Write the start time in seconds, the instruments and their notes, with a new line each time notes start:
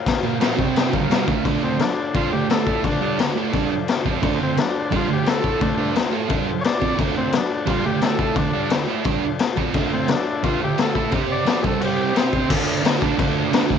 Already playing: transistor combo organ F4 A#4 F5
0.06 kick, snare, crash
0.23 distorted electric guitar A#2 F3
0.40 distorted electric guitar A#2 F3 A#3, snare, crash
0.56 distorted electric guitar C3 G3 C4, transistor combo organ G4 C5 G5, kick
0.76 snare, crash
0.91 distorted electric guitar G2 D3 G3, transistor combo organ F4 A#4 F5, kick
1.08 distorted electric guitar C3 G3 C4, snare, crash
1.26 distorted electric guitar D3 A3 D4, kick
1.42 distorted electric guitar D3 A3 D4, transistor combo organ F4 A4 D5, kick, crash
1.62 distorted electric guitar D3 A3, transistor combo organ C4
1.79 transistor combo organ D4, muted distorted electric guitar stroke, snare, crash
2.14 distorted electric guitar G3 D4 G4, transistor combo organ F4, kick, crash
2.32 distorted electric guitar D3 A3, transistor combo organ G4
2.50 distorted electric guitar D3 A3, transistor combo organ A4, snare, crash
2.66 distorted electric guitar A3 E4 A4, kick
2.84 distorted electric guitar D3 A3, transistor combo organ D4, kick, crash
3.01 distorted electric guitar G3 D4 G4
3.19 distorted electric guitar D3 A3, snare, crash
3.36 distorted electric guitar A3 E4 A4
3.53 distorted electric guitar G3 D4 G4, kick, crash
3.88 snare, crash
4.05 distorted electric guitar F3 C4 F4, kick
4.21 distorted electric guitar D3 A3 D4, transistor combo organ F4 A4 C5, kick, crash
4.40 distorted electric guitar D3 A3, transistor combo organ C4
4.57 transistor combo organ D4, muted distorted electric guitar stroke, snare, crash
4.91 distorted electric guitar G3 D4 G4, kick, crash
4.96 transistor combo organ F4
5.09 distorted electric guitar D3 A3
5.13 transistor combo organ G4
5.25 distorted electric guitar D3 A3, snare, crash
5.30 transistor combo organ A4
5.42 distorted electric guitar A3 E4 A4, kick
5.60 distorted electric guitar D3 A3, transistor combo organ A3 D4, kick, crash
5.78 distorted electric guitar G3 D4 G4
5.95 distorted electric guitar D3 A3, snare, crash
6.11 distorted electric guitar A3 E4 A4
6.29 distorted electric guitar G3 D4 G4, kick, crash
6.61 transistor combo organ C#5, crash
6.65 transistor combo organ D5, snare
6.80 distorted electric guitar F3 C4 F4, kick
6.97 distorted electric guitar D3 A3 D4, transistor combo organ F4 A4 D5, kick, crash
7.16 distorted electric guitar D3 A3, transistor combo organ C4
7.32 muted distorted electric guitar stroke, snare, crash
7.37 transistor combo organ D4
7.66 distorted electric guitar G3 D4 G4, transistor combo organ F4, kick, crash
7.85 distorted electric guitar D3 A3, transistor combo organ G4
8.02 distorted electric guitar D3 A3, transistor combo organ A4, snare, crash
8.19 distorted electric guitar A3 E4 A4, kick
8.36 distorted electric guitar D3 A3, transistor combo organ D4, kick, crash
8.53 distorted electric guitar G3 D4 G4
8.70 distorted electric guitar D3 A3, snare, crash
8.87 distorted electric guitar A3 E4 A4
9.04 distorted electric guitar G3 D4 G4, kick, crash
9.39 snare, crash
9.56 distorted electric guitar F3 C4 F4, kick
9.74 distorted electric guitar D3 A3 D4, transistor combo organ F4 A4 E5, kick, crash
9.92 distorted electric guitar D3 A3, transistor combo organ C4
10.08 transistor combo organ D4, muted distorted electric guitar stroke, snare, crash
10.43 distorted electric guitar G3 D4 G4, transistor combo organ F4, kick, crash
10.62 distorted electric guitar D3 A3, transistor combo organ G4
10.78 distorted electric guitar D3 A3, snare, crash
10.82 transistor combo organ A4
10.95 distorted electric guitar A3 E4 A4, kick
11.11 distorted electric guitar C4 G4 C5, transistor combo organ C4 G4 C5, kick, crash
11.32 transistor combo organ D5
11.45 distorted electric guitar F3 C4 F4, snare, crash
11.62 distorted electric guitar C3 G3 C4, transistor combo organ C4 G4 G#4, kick
11.67 transistor combo organ A4 C5
11.80 transistor combo organ F#4, crash
11.85 transistor combo organ G4
12.14 distorted electric guitar C4 G4 C5, snare, crash
12.18 transistor combo organ C4
12.33 kick
12.48 distorted electric guitar D3 A3 D4, transistor combo organ F4 A4 D5, kick, crash
12.83 distorted electric guitar D3 A3 D4, snare, crash
13.01 distorted electric guitar D3 A3 D4, kick
13.18 distorted electric guitar D3 A3 D4, kick, crash
13.51 distorted electric guitar D3 A3 D4, snare, crash
13.69 distorted electric guitar D3 A3 D4, kick